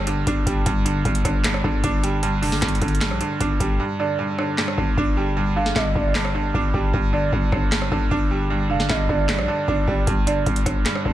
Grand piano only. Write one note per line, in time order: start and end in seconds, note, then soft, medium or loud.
0.00 0.66 G2 medium
0.00 0.07 D3 medium
0.00 0.46 G3 medium
0.00 0.27 D4 loud
0.07 0.66 D3 medium
0.27 0.66 D4 medium
0.46 0.66 G3 medium
0.66 1.04 G2 medium
0.85 1.23 D3 medium
1.05 1.43 G2 medium
1.25 1.63 D3 medium
1.45 2.21 G2 medium
1.64 2.41 D3 medium
1.84 2.82 D4 loud
2.03 3.01 G3 medium
2.23 2.61 G2 medium
2.42 2.80 D3 medium
2.62 3.00 G2 medium
2.81 3.19 D3 medium
3.01 3.78 G2 medium
3.21 3.80 D3 medium
3.41 3.80 D4 medium
3.60 3.80 G3 medium
3.80 4.17 G2 medium
4.00 4.37 D3 medium
4.19 4.57 G2 medium
4.39 4.76 D3 medium
4.58 5.35 G2 medium
4.78 5.55 D3 medium
4.98 5.96 D4 loud
5.17 6.15 G3 medium
5.37 5.74 G2 medium
5.56 5.94 D3 medium
5.76 6.13 G2 medium
5.96 6.33 D3 medium
6.15 6.92 G2 medium
6.35 6.93 D3 medium
6.55 6.94 D4 medium
6.74 6.94 G3 medium
6.93 7.31 G2 medium
7.13 7.51 D3 medium
7.32 7.70 G2 medium
7.52 7.90 D3 medium
7.72 8.49 G2 medium
7.92 8.68 D3 medium
8.11 9.09 D4 loud
8.31 9.29 G3 medium
8.50 8.88 G2 medium
8.70 9.07 D3 medium
8.89 9.27 G2 medium
9.09 9.47 D3 medium
9.29 10.05 G2 medium
9.48 10.07 D3 medium
9.68 10.07 D4 medium
9.87 10.07 G3 medium
10.07 10.45 G2 medium
10.27 10.64 D3 medium
10.46 10.84 G2 medium
10.66 11.04 D3 medium
10.86 11.13 G2 medium
11.05 11.13 D3 medium